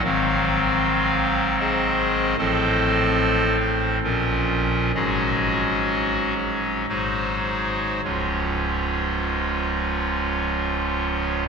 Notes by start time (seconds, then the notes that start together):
0.03 G#1 G#2 D#3 F#3 C4 F5
1.59 G#4 C5 D#5
2.38 A1 A2 F3 C4 A4 C5 D#5
3.60 C5
4.03 A#1 A#2 F3 C#4 F4 A#4
4.94 G#1 G#2 F#3 G#3 C#4 F#4 G#4 D#5
6.37 C#5
6.88 G#1 G#2 F#3 G#3 D#4 F#4 G#4 C5
8.04 C#1 C#2 G#2 F3 G#3 C#4 F4 C#5